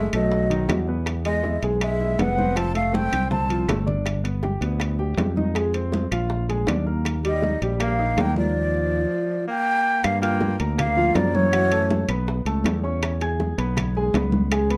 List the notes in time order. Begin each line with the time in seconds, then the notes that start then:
Already playing: G#3 E5
0.13 B1 F#3 A3 A4 D#5, high bongo, high conga, high timbale, claves
0.32 high bongo, high conga
0.50 D#3 D#4, high bongo, high conga, high timbale
0.69 E2 F#3 F#4, high bongo, low bongo, high conga, high timbale, low timbale, claves
0.87 B3 B4, high bongo
1.06 high bongo, high conga, high timbale, claves
1.25 G#3 G#4 D#5, high bongo, high conga, high timbale
1.44 E4 E5, high bongo, high conga, low timbale
1.63 B1 G#3 G#4, high conga, high timbale
1.81 G#3 E5, high bongo, high conga, high timbale, claves
2.00 E4 E5, high bongo, high conga
2.19 F1 B3 F#5, high bongo, low bongo, high conga, high timbale, low timbale
2.38 C4 C5, high bongo, high conga
2.56 F3 C4 F4 A5, high bongo, high conga, high timbale, claves
2.74 A3 A4 F5, high conga, high timbale
2.93 C4 G5, high bongo, high conga, low timbale
3.12 C2 C4 C5, high bongo, high conga, high timbale, claves
3.31 C4 A5, high bongo, low conga
3.49 F3 F4, high bongo, high timbale
3.68 G1 A3 A4, high bongo, low bongo, low conga, high timbale, low timbale, claves
3.86 D4 D5, high bongo, low conga
4.06 high bongo, high conga, high timbale, claves
4.24 B3 B4, high bongo, high conga, high timbale
4.43 G4 G5, high bongo, high conga, low timbale
4.61 D2 B3 B4, high conga, high timbale
4.80 high bongo, high conga, high timbale, claves
4.99 G4 G5, high bongo, high conga
5.17 F2, high bongo, low bongo, high conga, high timbale, low timbale
5.36 D#4 D#5, high bongo, high conga
5.55 G#3 G#4, high bongo, high conga, high timbale, claves
5.74 C4 C5, high conga, high timbale
5.92 high bongo, high conga, low timbale
6.11 A#1 F4 F5, high bongo, high conga, high timbale, claves
6.30 high bongo, high conga
6.49 G#3 G#4, high bongo, high conga, high timbale
6.67 D#2 D4 D5, high bongo, low bongo, high conga, high timbale, low timbale, claves
6.86 A#3 A#4, high bongo
7.05 high bongo, high conga, high timbale, claves
7.23 G3 G4 D#5, high bongo, high conga, high timbale
7.42 D#4 D#5, high bongo, high conga, low timbale
7.62 A#1 G3 G4, high conga, high timbale
7.80 A#3 F5, high bongo, high conga, high timbale, claves
7.99 D#4 D#5, high bongo, high conga
8.17 D#2 A#3, high bongo, low bongo, high conga, high timbale, low timbale
8.21 G5
8.36 F3 A#3 A#4 D5, high bongo, high conga
9.48 A#3 G5
10.03 G2 A#3 F5, high bongo, high conga, high timbale, claves
10.22 A#3 F4 F5 G5 F6, high bongo, high conga, high timbale
10.41 high bongo, high conga, low timbale
10.60 D2 A#3 A#4 A#5, high conga, high timbale
10.78 A#3 F5, high bongo, high conga, low conga, high timbale, claves
10.97 F3 F4 F5, high bongo, high conga
11.15 F#2 F3 A#3 A#4 D5 A#5, high bongo, low bongo, high conga, high timbale, low timbale
11.34 E3 C#5, high bongo, high conga
11.52 F#3 F#4 F#5, high bongo, high conga, high timbale, claves
11.71 A3 A4 A5, high timbale
11.90 high bongo, high conga, low timbale
12.08 B1 B3 B4 B5, high bongo, high conga, high timbale, claves
12.27 high bongo, high conga
12.45 C#2 A3 A4 A5, high bongo, high conga, high timbale
12.64 E2, high bongo, low bongo, high conga, high timbale, low timbale, claves
12.83 C#4 C#5 C#6, high bongo
13.02 high bongo, high conga, high timbale, claves
13.21 G#4 G#5 G#6, high bongo, high conga, high timbale
13.40 high bongo, high conga, low timbale
13.58 B1 B3 B4 B5, high conga, high timbale
13.77 high bongo, high conga, low conga, high timbale, claves
13.95 G#3 G#4 G#5, high bongo, high conga
14.14 C#2 B3 B4 B5, high bongo, low bongo, high conga, high timbale, low timbale
14.32 high bongo, high conga
14.52 G#3 G#4 G#5, high bongo, high conga, high timbale, claves
14.70 B3 B4 B5, high conga, high timbale